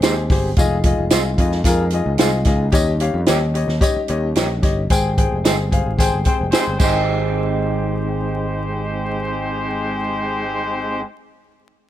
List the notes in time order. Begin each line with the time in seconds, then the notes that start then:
Already playing: G#3 C4 G4
0.02 D#2 G#3 D#4 G4 G#4 C5, snare, closed hi-hat, tambourine
0.30 G1 G4 G#4 C5, kick, snare, open hi-hat
0.56 F1 D#4 F4 G#4 D#5, kick, closed hi-hat, tambourine
0.83 F4 G#4 D#5, kick, closed hi-hat
0.98 F1
1.10 C2 G#3 D#4 F4 G#4 C5 D#5, snare, closed hi-hat, tambourine
1.38 F2 F4 G#4 D#5, kick, closed hi-hat
1.52 snare
1.64 F2 F4 G#4 A#4, kick, closed hi-hat, tambourine
1.90 F4 G#4 D#5, closed hi-hat
2.06 C#2
2.18 C2 G#3 D#4 F4 G#4 C5 D#5, snare, closed hi-hat, tambourine
2.45 C#2 F4 G#4 D#5, kick, snare, closed hi-hat
2.72 D#2 G3 C#4 G4 C#5 D#5, kick, closed hi-hat, tambourine
3.00 G4 C#5 F5, closed hi-hat
3.14 F2
3.26 D#2 A#3 D#4 G4 C#5 D#5, snare, closed hi-hat, tambourine
3.54 G4 C#5 D#5, closed hi-hat
3.68 D#2, snare
3.81 G4 C#5 D#5, kick, closed hi-hat, tambourine
3.96 muted picked electric bass stroke
4.08 D#2 G4 C#5 D#5, closed hi-hat
4.35 A#1 A#3 D#4 G4 C#5 D#5, snare, closed hi-hat, tambourine
4.62 G1 G4 C#5 D#5, kick, snare, closed hi-hat
4.90 G#1 G#3 C4 G4 G#4 C5 G5, kick, closed hi-hat, tambourine
5.17 G#4 C5 G5, kick, closed hi-hat
5.32 F1
5.45 G1 G#3 D#4 G4 G#4 C5 G#5, snare, closed hi-hat, tambourine
5.71 G#4 C5 F5, kick, closed hi-hat
5.86 G#1
5.98 G#1 C4 G#4 C5 G5, kick, closed hi-hat, tambourine
6.14 G1
6.24 C4 G#4 C5 G5, kick, closed hi-hat
6.41 F1
6.52 G#3 C4 D#4 G4 G#4 C5 G5, snare, closed hi-hat, tambourine
6.68 G1
6.79 G#1 G#3 C4 D#4 G4 G#4 C5, kick, crash, tambourine
6.83 G4 C5 G5